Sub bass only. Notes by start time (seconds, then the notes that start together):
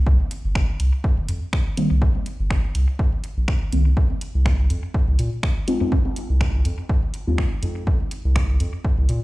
0.07 C2
0.44 G1
0.80 C2
1.18 G1
1.29 F2
1.91 C2
2.40 G1
2.75 C2
3.37 A#1
3.73 C2
3.97 F2
4.35 C2
4.70 F2
5.08 C2
5.19 A#2
5.81 F2
6.30 C2
6.65 F2
7.27 D#2
7.63 F2
7.87 F2
8.25 C2
8.60 F2
8.98 C2
9.09 A#2